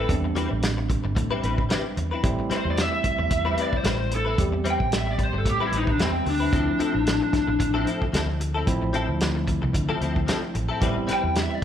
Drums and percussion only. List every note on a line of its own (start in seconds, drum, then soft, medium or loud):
0.09 kick loud
0.09 closed hi-hat medium
0.36 closed hi-hat medium
0.62 snare loud
0.62 closed hi-hat medium
0.90 kick medium
0.90 closed hi-hat medium
1.16 kick medium
1.16 closed hi-hat medium
1.43 closed hi-hat medium
1.58 kick medium
1.70 snare loud
1.70 closed hi-hat medium
1.97 closed hi-hat medium
2.23 kick loud
2.23 closed hi-hat medium
2.51 snare soft
2.51 closed hi-hat medium
2.77 snare loud
2.77 closed hi-hat medium
3.04 kick medium
3.04 closed hi-hat medium
3.31 kick medium
3.31 closed hi-hat medium
3.57 closed hi-hat medium
3.73 kick medium
3.84 snare loud
3.84 closed hi-hat medium
4.11 closed hi-hat medium
4.38 kick loud
4.38 closed hi-hat medium
4.65 closed hi-hat medium
4.80 kick medium
4.92 snare loud
4.92 closed hi-hat medium
5.19 kick medium
5.19 closed hi-hat medium
5.46 kick medium
5.46 closed hi-hat medium
5.72 closed hi-hat medium
5.87 kick medium
5.99 snare loud
5.99 closed hi-hat medium
6.26 open hi-hat medium
6.53 kick loud
6.53 closed hi-hat medium
6.80 closed hi-hat medium
7.07 snare loud
7.07 closed hi-hat medium
7.33 kick medium
7.33 snare soft
7.33 closed hi-hat medium
7.60 kick medium
7.60 closed hi-hat medium
7.87 closed hi-hat medium
8.02 kick medium
8.14 snare loud
8.14 closed hi-hat medium
8.41 closed hi-hat medium
8.67 kick loud
8.67 closed hi-hat medium
8.94 closed hi-hat medium
9.20 snare loud
9.20 closed hi-hat medium
9.47 kick medium
9.47 closed hi-hat medium
9.74 kick medium
9.74 closed hi-hat medium
10.01 closed hi-hat medium
10.16 kick medium
10.28 snare loud
10.28 closed hi-hat medium
10.55 closed hi-hat medium
10.81 kick loud
10.81 closed hi-hat medium
11.08 snare soft
11.08 closed hi-hat medium
11.35 snare loud
11.35 closed hi-hat medium